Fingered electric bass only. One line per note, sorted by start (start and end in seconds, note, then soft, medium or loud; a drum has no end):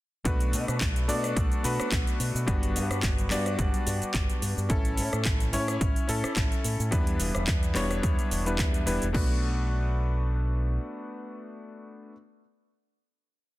0.26 0.55 B1 medium
0.53 0.66 B2 loud
0.68 0.79 B2 loud
0.81 1.10 B1 medium
1.09 1.32 B2 medium
1.37 1.49 B1 medium
1.64 1.77 B2 loud
1.80 muted fingered electric bass stroke soft
1.92 2.05 B1 medium
2.20 2.32 B2 medium
2.35 2.45 B2 medium
2.47 2.77 G1 loud
2.75 2.88 G2 loud
2.90 3.01 G2 loud
3.03 3.32 G1 medium
3.31 3.54 G2 medium
3.59 3.71 G1 medium
3.87 3.99 G2 loud
4.02 muted fingered electric bass stroke soft
4.14 4.27 G1 loud
4.42 4.54 G2 medium
4.57 4.68 G2 medium
4.70 4.99 A1 loud
4.98 5.10 A2 medium
5.13 5.23 A2 loud
5.25 5.55 A1 medium
5.53 5.77 A2 medium
5.81 5.93 A1 loud
6.09 6.21 A2 loud
6.24 muted fingered electric bass stroke soft
6.37 6.49 A1 loud
6.64 6.77 A2 medium
6.80 6.90 A2 medium
6.92 7.21 E2 loud
7.20 7.32 E1 loud
7.35 7.45 E1 loud
7.48 7.77 E2 medium
7.75 7.99 E1 medium
8.03 8.16 E2 medium
8.31 8.60 E1 medium
8.59 8.88 E2 medium
8.87 8.99 E1 medium
9.02 9.12 E1 medium